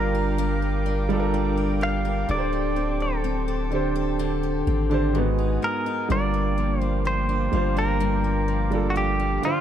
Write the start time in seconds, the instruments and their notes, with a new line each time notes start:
Already playing: 808-style bass G1, steel-string acoustic guitar G3 D4 F4 A#4, grand piano G3 D4 F4 A#4, clean electric guitar A#4, analog synth pad A#4 F5 G5 D6
0.15 steel-string acoustic guitar A#4
0.38 steel-string acoustic guitar G3 A#4
0.62 steel-string acoustic guitar F4
0.86 steel-string acoustic guitar D4
1.09 grand piano G3 D4 F4, steel-string acoustic guitar F4
1.13 grand piano A4
1.20 grand piano A#4
1.34 steel-string acoustic guitar D4
1.57 steel-string acoustic guitar A#4
1.81 steel-string acoustic guitar F4, clean electric guitar F5
2.05 steel-string acoustic guitar A#4
2.28 808-style bass D1, grand piano D3 D4 G4, steel-string acoustic guitar D3 A4, analog synth pad C5 A5, clean electric guitar D5
2.32 grand piano A#4
2.39 grand piano C5
2.53 steel-string acoustic guitar G4
2.76 steel-string acoustic guitar C4
3.00 steel-string acoustic guitar G4, clean electric guitar A4
3.24 steel-string acoustic guitar C4
3.48 steel-string acoustic guitar A4
3.71 grand piano D3 D4 G4, steel-string acoustic guitar G4
3.75 grand piano C5
3.96 steel-string acoustic guitar A4
4.19 steel-string acoustic guitar D3 A4
4.43 steel-string acoustic guitar G4
4.67 808-style bass G#1, steel-string acoustic guitar C4
4.90 grand piano D3 D4 G4, steel-string acoustic guitar G4
4.94 grand piano C5
5.13 steel-string acoustic guitar G#2, grand piano G#3 D#4 F#4, analog synth pad B3 F#5 G#5 D#6
5.18 grand piano B3
5.39 steel-string acoustic guitar D#4
5.62 steel-string acoustic guitar B3, clean electric guitar A#4
5.86 steel-string acoustic guitar D#4
6.09 808-style bass G1, steel-string acoustic guitar G2 D4, grand piano G3 D4 F4, analog synth pad A#3 F5 G5 D6, clean electric guitar D5
6.13 grand piano A#4
6.34 steel-string acoustic guitar A#3
6.58 steel-string acoustic guitar F3
6.81 steel-string acoustic guitar A#3, clean electric guitar C5
7.05 steel-string acoustic guitar F3, clean electric guitar C5
7.29 steel-string acoustic guitar D4
7.52 808-style bass G1, grand piano G3 D4 F4, steel-string acoustic guitar A#3
7.56 grand piano C5
7.77 steel-string acoustic guitar D4, clean electric guitar A#4
8.00 steel-string acoustic guitar G2 D4
8.24 steel-string acoustic guitar A#3
8.48 steel-string acoustic guitar F3
8.71 grand piano G3 D4 F4, steel-string acoustic guitar A#3
8.75 grand piano A4
8.90 clean electric guitar F#4
8.96 steel-string acoustic guitar F3, clean electric guitar G4
9.20 steel-string acoustic guitar D4
9.42 grand piano D3 D4 F4, steel-string acoustic guitar D3, clean electric guitar F4, analog synth pad C5 A5
9.46 grand piano C5